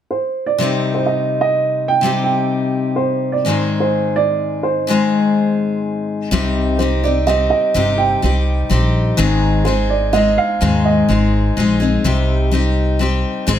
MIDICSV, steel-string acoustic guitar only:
0, 0, Header, 1, 2, 480
1, 0, Start_track
1, 0, Key_signature, -3, "minor"
1, 0, Tempo, 477327
1, 597, Time_signature, 3, 2, 24, 8
1, 13666, End_track
2, 0, Start_track
2, 0, Title_t, "Steel-string acoustic guitar"
2, 0, Program_c, 0, 25
2, 588, Note_on_c, 0, 48, 70
2, 602, Note_on_c, 0, 55, 71
2, 613, Note_on_c, 0, 60, 75
2, 627, Note_on_c, 0, 63, 75
2, 637, Note_on_c, 0, 67, 74
2, 2011, Note_off_c, 0, 48, 0
2, 2023, Note_on_c, 0, 48, 63
2, 2028, Note_off_c, 0, 55, 0
2, 2040, Note_on_c, 0, 55, 65
2, 2050, Note_off_c, 0, 60, 0
2, 2054, Note_on_c, 0, 60, 63
2, 2058, Note_off_c, 0, 67, 0
2, 2061, Note_off_c, 0, 63, 0
2, 2065, Note_on_c, 0, 63, 73
2, 2076, Note_on_c, 0, 67, 64
2, 3467, Note_on_c, 0, 44, 56
2, 3470, Note_off_c, 0, 48, 0
2, 3477, Note_on_c, 0, 51, 67
2, 3479, Note_off_c, 0, 55, 0
2, 3488, Note_on_c, 0, 56, 69
2, 3494, Note_off_c, 0, 60, 0
2, 3497, Note_off_c, 0, 67, 0
2, 3498, Note_on_c, 0, 60, 63
2, 3502, Note_off_c, 0, 63, 0
2, 3506, Note_on_c, 0, 63, 64
2, 3515, Note_on_c, 0, 68, 64
2, 4886, Note_off_c, 0, 44, 0
2, 4898, Note_off_c, 0, 51, 0
2, 4898, Note_on_c, 0, 44, 69
2, 4910, Note_off_c, 0, 56, 0
2, 4911, Note_on_c, 0, 51, 70
2, 4922, Note_on_c, 0, 56, 70
2, 4926, Note_off_c, 0, 60, 0
2, 4930, Note_on_c, 0, 60, 70
2, 4934, Note_off_c, 0, 63, 0
2, 4936, Note_off_c, 0, 68, 0
2, 4938, Note_on_c, 0, 63, 64
2, 4949, Note_on_c, 0, 68, 70
2, 6343, Note_off_c, 0, 51, 0
2, 6346, Note_off_c, 0, 44, 0
2, 6347, Note_on_c, 0, 48, 75
2, 6350, Note_off_c, 0, 60, 0
2, 6353, Note_off_c, 0, 56, 0
2, 6357, Note_off_c, 0, 63, 0
2, 6357, Note_on_c, 0, 55, 78
2, 6362, Note_on_c, 0, 60, 76
2, 6369, Note_on_c, 0, 63, 76
2, 6370, Note_off_c, 0, 68, 0
2, 6374, Note_on_c, 0, 67, 84
2, 6816, Note_off_c, 0, 55, 0
2, 6828, Note_on_c, 0, 55, 57
2, 6831, Note_off_c, 0, 48, 0
2, 6837, Note_off_c, 0, 60, 0
2, 6841, Note_on_c, 0, 60, 53
2, 6844, Note_off_c, 0, 67, 0
2, 6849, Note_off_c, 0, 63, 0
2, 6853, Note_on_c, 0, 63, 56
2, 6862, Note_on_c, 0, 67, 60
2, 7063, Note_off_c, 0, 67, 0
2, 7071, Note_off_c, 0, 55, 0
2, 7075, Note_on_c, 0, 67, 42
2, 7078, Note_off_c, 0, 60, 0
2, 7079, Note_off_c, 0, 63, 0
2, 7091, Note_on_c, 0, 63, 40
2, 7106, Note_on_c, 0, 60, 37
2, 7308, Note_on_c, 0, 55, 57
2, 7309, Note_off_c, 0, 60, 0
2, 7315, Note_off_c, 0, 67, 0
2, 7320, Note_off_c, 0, 63, 0
2, 7321, Note_on_c, 0, 60, 55
2, 7333, Note_on_c, 0, 63, 57
2, 7337, Note_on_c, 0, 67, 61
2, 7782, Note_off_c, 0, 55, 0
2, 7787, Note_on_c, 0, 48, 66
2, 7794, Note_on_c, 0, 55, 67
2, 7795, Note_off_c, 0, 60, 0
2, 7797, Note_off_c, 0, 67, 0
2, 7798, Note_off_c, 0, 63, 0
2, 7799, Note_on_c, 0, 60, 74
2, 7802, Note_on_c, 0, 63, 68
2, 7809, Note_on_c, 0, 67, 80
2, 8257, Note_off_c, 0, 55, 0
2, 8270, Note_off_c, 0, 48, 0
2, 8270, Note_on_c, 0, 55, 53
2, 8274, Note_off_c, 0, 60, 0
2, 8278, Note_on_c, 0, 60, 53
2, 8281, Note_off_c, 0, 67, 0
2, 8284, Note_off_c, 0, 63, 0
2, 8288, Note_on_c, 0, 63, 61
2, 8301, Note_on_c, 0, 67, 57
2, 8732, Note_off_c, 0, 55, 0
2, 8744, Note_on_c, 0, 55, 65
2, 8751, Note_off_c, 0, 60, 0
2, 8755, Note_on_c, 0, 60, 67
2, 8763, Note_off_c, 0, 63, 0
2, 8767, Note_off_c, 0, 67, 0
2, 8767, Note_on_c, 0, 63, 69
2, 8777, Note_on_c, 0, 67, 66
2, 9223, Note_on_c, 0, 44, 73
2, 9228, Note_off_c, 0, 55, 0
2, 9228, Note_on_c, 0, 51, 81
2, 9233, Note_off_c, 0, 60, 0
2, 9235, Note_on_c, 0, 56, 78
2, 9237, Note_on_c, 0, 60, 88
2, 9240, Note_off_c, 0, 63, 0
2, 9240, Note_off_c, 0, 67, 0
2, 9244, Note_on_c, 0, 63, 79
2, 9244, Note_on_c, 0, 68, 86
2, 9691, Note_off_c, 0, 56, 0
2, 9704, Note_on_c, 0, 56, 55
2, 9707, Note_off_c, 0, 44, 0
2, 9710, Note_off_c, 0, 51, 0
2, 9712, Note_off_c, 0, 60, 0
2, 9717, Note_on_c, 0, 60, 56
2, 9718, Note_off_c, 0, 68, 0
2, 9724, Note_off_c, 0, 63, 0
2, 9728, Note_on_c, 0, 63, 62
2, 9738, Note_on_c, 0, 68, 62
2, 10173, Note_off_c, 0, 56, 0
2, 10185, Note_on_c, 0, 56, 57
2, 10192, Note_off_c, 0, 60, 0
2, 10196, Note_on_c, 0, 60, 60
2, 10201, Note_off_c, 0, 63, 0
2, 10205, Note_off_c, 0, 68, 0
2, 10205, Note_on_c, 0, 63, 59
2, 10217, Note_on_c, 0, 68, 55
2, 10664, Note_off_c, 0, 56, 0
2, 10666, Note_on_c, 0, 44, 60
2, 10673, Note_on_c, 0, 51, 73
2, 10676, Note_on_c, 0, 56, 72
2, 10678, Note_off_c, 0, 68, 0
2, 10679, Note_off_c, 0, 60, 0
2, 10680, Note_off_c, 0, 63, 0
2, 10683, Note_on_c, 0, 60, 73
2, 10684, Note_on_c, 0, 63, 78
2, 10690, Note_on_c, 0, 68, 79
2, 11135, Note_off_c, 0, 56, 0
2, 11147, Note_on_c, 0, 56, 53
2, 11149, Note_off_c, 0, 44, 0
2, 11152, Note_off_c, 0, 51, 0
2, 11154, Note_off_c, 0, 60, 0
2, 11158, Note_on_c, 0, 60, 54
2, 11161, Note_off_c, 0, 63, 0
2, 11161, Note_off_c, 0, 68, 0
2, 11165, Note_on_c, 0, 63, 55
2, 11179, Note_on_c, 0, 68, 61
2, 11620, Note_off_c, 0, 56, 0
2, 11632, Note_on_c, 0, 56, 62
2, 11638, Note_off_c, 0, 60, 0
2, 11642, Note_on_c, 0, 60, 65
2, 11645, Note_off_c, 0, 68, 0
2, 11650, Note_off_c, 0, 63, 0
2, 11654, Note_on_c, 0, 63, 65
2, 11664, Note_on_c, 0, 68, 77
2, 11853, Note_off_c, 0, 68, 0
2, 11865, Note_off_c, 0, 63, 0
2, 11865, Note_on_c, 0, 68, 50
2, 11872, Note_off_c, 0, 56, 0
2, 11873, Note_off_c, 0, 60, 0
2, 11877, Note_on_c, 0, 63, 42
2, 11885, Note_on_c, 0, 60, 43
2, 11897, Note_on_c, 0, 56, 41
2, 12108, Note_off_c, 0, 68, 0
2, 12111, Note_off_c, 0, 60, 0
2, 12112, Note_off_c, 0, 56, 0
2, 12112, Note_on_c, 0, 48, 70
2, 12114, Note_off_c, 0, 63, 0
2, 12116, Note_on_c, 0, 55, 71
2, 12123, Note_on_c, 0, 60, 72
2, 12127, Note_on_c, 0, 63, 74
2, 12133, Note_on_c, 0, 67, 82
2, 12573, Note_off_c, 0, 55, 0
2, 12585, Note_on_c, 0, 55, 59
2, 12591, Note_off_c, 0, 60, 0
2, 12592, Note_off_c, 0, 48, 0
2, 12595, Note_on_c, 0, 60, 58
2, 12602, Note_off_c, 0, 63, 0
2, 12603, Note_off_c, 0, 67, 0
2, 12606, Note_on_c, 0, 63, 69
2, 12617, Note_on_c, 0, 67, 64
2, 13053, Note_off_c, 0, 55, 0
2, 13065, Note_on_c, 0, 55, 59
2, 13076, Note_off_c, 0, 60, 0
2, 13080, Note_on_c, 0, 60, 62
2, 13083, Note_off_c, 0, 63, 0
2, 13085, Note_off_c, 0, 67, 0
2, 13087, Note_on_c, 0, 63, 62
2, 13099, Note_on_c, 0, 67, 62
2, 13542, Note_on_c, 0, 44, 69
2, 13548, Note_off_c, 0, 55, 0
2, 13549, Note_on_c, 0, 51, 71
2, 13552, Note_on_c, 0, 56, 81
2, 13555, Note_off_c, 0, 60, 0
2, 13559, Note_off_c, 0, 63, 0
2, 13559, Note_on_c, 0, 60, 80
2, 13563, Note_off_c, 0, 67, 0
2, 13563, Note_on_c, 0, 63, 79
2, 13567, Note_on_c, 0, 68, 88
2, 13666, Note_off_c, 0, 44, 0
2, 13666, Note_off_c, 0, 51, 0
2, 13666, Note_off_c, 0, 56, 0
2, 13666, Note_off_c, 0, 60, 0
2, 13666, Note_off_c, 0, 63, 0
2, 13666, Note_off_c, 0, 68, 0
2, 13666, End_track
0, 0, End_of_file